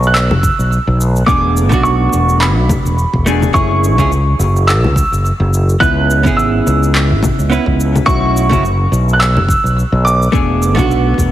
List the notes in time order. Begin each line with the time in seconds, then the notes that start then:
Already playing: B1
0.03 F#6, shaker
0.14 E6, clap, shaker
0.30 F#1, low conga
0.43 kick, shaker
0.59 B1, shaker
0.72 shaker
0.87 B1
1.01 shaker
1.16 shaker
1.26 E1 A3 B3 D4 G#4 D6, kick, shaker
1.57 shaker
1.69 B1 A3 B3 D4, kick, low conga, shaker
1.73 F#4
1.83 C#6, shaker
2.13 E1, shaker
2.29 shaker
2.40 B5, clap, shaker
2.57 B1
2.69 kick, low conga, shaker
2.85 E1, shaker
2.99 shaker
3.13 E1, kick
3.26 A3 B3 D4 G#4, shaker
3.42 low conga, shaker
3.53 F#1 A3 C#4 E4 G#4 C#6, kick, shaker
3.84 shaker
3.98 C#2 A3 C#4 E4 G#4, kick, low conga, shaker
4.12 shaker
4.39 F#1, shaker
4.56 shaker
4.67 E6, clap, shaker
4.84 C#2, low conga
4.96 kick, shaker
5.12 F#1, shaker
5.26 shaker
5.40 F#1
5.54 shaker
5.69 shaker
5.80 C#2 B3 C#4 E4 B4 F#6, kick, shaker
6.10 shaker
6.23 G#1 B3 C#4 E4 G#4, kick, low conga, shaker
6.37 E6, shaker
6.67 C#2, shaker
6.83 shaker
6.95 clap, shaker
7.11 G#1
7.23 kick, low conga, shaker
7.39 C#2, shaker
7.49 B3 C#4 E4 B4, shaker
7.66 C#2, kick
7.80 shaker
7.96 low conga, shaker
8.06 B1 A3 C#4 E4 F#4 C#6, kick, shaker
8.37 shaker
8.49 F#1 A3 C#4 E4 F#4, kick, low conga, shaker
8.65 shaker
8.92 B1, shaker
9.09 shaker
9.13 F#6
9.20 E6, clap, shaker
9.36 F#1, low conga
9.49 kick, shaker
9.64 B1, shaker
9.79 shaker
9.92 B1
10.05 D6, shaker
10.22 shaker
10.32 E1 A3 B3 D4 G#4, kick, shaker
10.62 shaker
10.75 B1 A3 B3 D4, kick, low conga, shaker
10.79 F#4
10.91 shaker
11.18 E1, kick, shaker